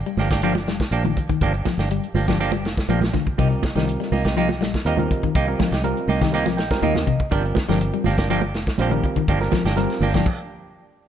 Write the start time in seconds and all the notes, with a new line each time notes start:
0.06 G3, closed hi-hat
0.17 G1 F3 A#3 D4 G4, snare, open hi-hat, high conga
0.30 A#3 D4 G4, kick, snare, closed hi-hat
0.42 F3 A#3 D4 G4, closed hi-hat
0.55 muted clean electric guitar stroke, snare, closed hi-hat, high conga
0.67 F1 G3, muted clean electric guitar stroke, snare, closed hi-hat
0.80 kick, snare
0.91 A#1 F3 A#3 D4 G4, closed hi-hat
1.05 D#3, muted clean electric guitar stroke, closed hi-hat, high conga
1.17 muted clean electric guitar stroke, kick, closed hi-hat
1.29 D#3, muted clean electric guitar stroke, kick, closed hi-hat
1.41 G1 F3 A#3 D4 G4, kick, closed hi-hat
1.54 muted clean electric guitar stroke, closed hi-hat
1.65 F3, muted clean electric guitar stroke, kick, snare, closed hi-hat, high conga
1.78 G1 A#3 D4 G4, snare, closed hi-hat
1.91 G3, muted clean electric guitar stroke, closed hi-hat
2.03 closed hi-hat
2.14 G1 F3 A#3 D4 G4, open hi-hat, high conga
2.28 F3 A#3 D4 G4, kick, snare, closed hi-hat
2.40 F3 A#3 D4 G4, closed hi-hat
2.52 G3, muted clean electric guitar stroke, closed hi-hat, high conga
2.64 F1, muted clean electric guitar stroke, snare, closed hi-hat
2.77 kick, snare, closed hi-hat
2.89 A#1 F3 A#3 D4 G4, closed hi-hat, high conga
3.01 muted clean electric guitar stroke, snare, closed hi-hat, high conga
3.13 D3, muted clean electric guitar stroke, kick, snare, closed hi-hat, high conga
3.27 muted clean electric guitar stroke, kick
3.38 C2 C3 G3 C4 D#4 F4 G4 A#4, muted clean electric guitar stroke, kick, closed hi-hat
3.51 muted clean electric guitar stroke, closed hi-hat
3.62 muted clean electric guitar stroke, kick, snare, closed hi-hat, high conga
3.75 C2 D#3 G3 C4 D#4 F4 G4 A#4, snare, closed hi-hat
3.88 muted clean electric guitar stroke, closed hi-hat
4.00 G3, snare, closed hi-hat
4.12 C2 A#3 D#4 G4, open hi-hat, high conga
4.25 D#4 G4, kick, snare, closed hi-hat
4.37 F3 A#3 D#4 G4, closed hi-hat
4.49 muted clean electric guitar stroke, snare, closed hi-hat, high conga
4.61 A#1 G3, muted clean electric guitar stroke, snare, closed hi-hat
4.74 kick, snare
4.85 D#2 G3 A#3 C4 D#4 F4 G4 A#4, closed hi-hat
4.97 D#3 G3 C4 F4 A#4, muted clean electric guitar stroke, closed hi-hat, high conga
5.11 muted clean electric guitar stroke, kick, closed hi-hat
5.23 D#3, muted clean electric guitar stroke, kick, closed hi-hat
5.35 C2 A#3 D#4 G4, kick, closed hi-hat
5.47 G3 C4 F4 A#4, muted clean electric guitar stroke, closed hi-hat
5.59 F3, muted clean electric guitar stroke, muted fingered electric bass stroke, kick, snare, closed hi-hat, high conga
5.72 C2 D#4 G4, snare, closed hi-hat
5.84 G3 C4 F4 A#4, muted clean electric guitar stroke, closed hi-hat
5.97 closed hi-hat
6.08 C2 A#3 D#4 G4, open hi-hat, high conga
6.21 D#3 D#4 G4, kick, snare, closed hi-hat
6.32 G3 A#3 C4 D#4 F4 G4 A#4, closed hi-hat
6.46 F3, muted clean electric guitar stroke, snare, closed hi-hat, high conga
6.57 A#1 G5, muted clean electric guitar stroke, snare, closed hi-hat
6.70 G3 C4 F4 A#4, kick, snare, closed hi-hat
6.82 D#2 D#3 A#3 D#4 G4 D#5, closed hi-hat, high conga
6.95 muted clean electric guitar stroke, snare, closed hi-hat, high conga
7.07 C3, muted clean electric guitar stroke, kick, closed hi-hat
7.20 muted clean electric guitar stroke, kick
7.31 G1 F3 G3 C4 D4 F4 G4 A#4, muted clean electric guitar stroke, kick, closed hi-hat
7.45 muted clean electric guitar stroke, closed hi-hat
7.55 muted clean electric guitar stroke, kick, snare, closed hi-hat, high conga
7.68 G1 F3 G3 A#3 C4 D4 F4 G4 A#4, snare, closed hi-hat
7.81 muted clean electric guitar stroke, closed hi-hat
7.94 G3, closed hi-hat
8.04 G1 F3 A#3 D4 G4, open hi-hat, high conga
8.18 A#3 D4 G4, kick, snare, closed hi-hat
8.30 F3 A#3 D4 G4, closed hi-hat
8.42 muted clean electric guitar stroke, closed hi-hat, high conga
8.54 F1, muted clean electric guitar stroke, snare, closed hi-hat
8.67 kick, snare
8.78 A#1 F3 G3 A#3 C4 D4 F4 G4 C5, closed hi-hat, high conga
8.90 D#3 G3 C4 F4 A#4, closed hi-hat, high conga
8.94 muted clean electric guitar stroke
9.03 muted clean electric guitar stroke, kick, closed hi-hat
9.16 D#3, muted clean electric guitar stroke, kick, closed hi-hat
9.28 G1 F3 A#3 D4 G4, kick, closed hi-hat
9.40 G3 C4 F4 A#4, muted clean electric guitar stroke, snare, closed hi-hat
9.52 F3, muted fingered electric bass stroke, muted clean electric guitar stroke, kick, snare, closed hi-hat, high conga
9.64 G1 A#3 D4 G4, snare, closed hi-hat
9.76 G3 C4 F4 A#4, muted clean electric guitar stroke, snare, closed hi-hat
9.90 snare, closed hi-hat
10.00 G1 F3 A#3 D4 G4, open hi-hat, high conga
10.14 F3 A#3 D4 G4, kick, snare, closed hi-hat
10.26 kick, crash